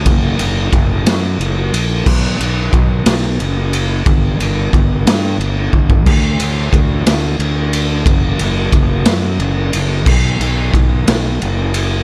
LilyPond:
<<
  \new Staff \with { instrumentName = "Fingered electric bass" } { \clef bass \time 6/8 \key b \minor \tempo 4. = 60 fis,,8 fis,,8 fis,,8 fis,8 fis,,8 ais,,8 | b,,8 b,,8 b,,8 b,,8 fis,,4 | g,,8 g,,8 g,,8 g,8 g,,8 g,,8 | d,8 d,8 d,8 d,8 d,4 |
fis,,8 fis,,8 fis,,8 fis,8 fis,,8 fis,,8 | b,,8 b,,8 b,,8 b,,8 fis,,4 | }
  \new DrumStaff \with { instrumentName = "Drums" } \drummode { \time 6/8 <bd cymr>8 cymr8 <bd cymr>8 <cymr sn>8 cymr8 cymr8 | <cymc bd>8 cymr8 <bd cymr>8 <cymr sn>8 cymr8 cymr8 | <bd cymr>8 cymr8 <bd cymr>8 <cymr sn>8 cymr8 bd16 bd16 | <cymc bd>8 cymr8 <bd cymr>8 <cymr sn>8 cymr8 cymr8 |
<bd cymr>8 cymr8 <bd cymr>8 <cymr sn>8 cymr8 cymr8 | <cymc bd>8 cymr8 <bd cymr>8 <cymr sn>8 cymr8 cymr8 | }
>>